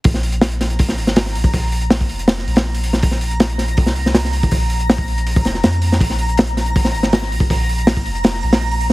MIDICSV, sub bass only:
0, 0, Header, 1, 2, 480
1, 0, Start_track
1, 0, Tempo, 372671
1, 61, Time_signature, 4, 2, 24, 8
1, 11499, End_track
2, 0, Start_track
2, 0, Title_t, "Sub bass"
2, 0, Program_c, 0, 38
2, 66, Note_on_c, 0, 34, 100
2, 1261, Note_on_c, 0, 32, 83
2, 1280, Note_off_c, 0, 34, 0
2, 1737, Note_on_c, 0, 34, 81
2, 1756, Note_off_c, 0, 32, 0
2, 1955, Note_off_c, 0, 34, 0
2, 1979, Note_on_c, 0, 34, 93
2, 2698, Note_on_c, 0, 29, 92
2, 2718, Note_off_c, 0, 34, 0
2, 3161, Note_off_c, 0, 29, 0
2, 3176, Note_on_c, 0, 34, 80
2, 4865, Note_on_c, 0, 36, 87
2, 4884, Note_off_c, 0, 34, 0
2, 5804, Note_off_c, 0, 36, 0
2, 5820, Note_on_c, 0, 34, 95
2, 7001, Note_off_c, 0, 34, 0
2, 7020, Note_on_c, 0, 29, 89
2, 7237, Note_off_c, 0, 29, 0
2, 7261, Note_on_c, 0, 41, 88
2, 7722, Note_off_c, 0, 41, 0
2, 7734, Note_on_c, 0, 34, 95
2, 8939, Note_on_c, 0, 32, 83
2, 8958, Note_off_c, 0, 34, 0
2, 9418, Note_on_c, 0, 34, 83
2, 9437, Note_off_c, 0, 32, 0
2, 9636, Note_off_c, 0, 34, 0
2, 9663, Note_on_c, 0, 34, 98
2, 10379, Note_on_c, 0, 29, 97
2, 10398, Note_off_c, 0, 34, 0
2, 10841, Note_off_c, 0, 29, 0
2, 10859, Note_on_c, 0, 34, 79
2, 11499, Note_off_c, 0, 34, 0
2, 11499, End_track
0, 0, End_of_file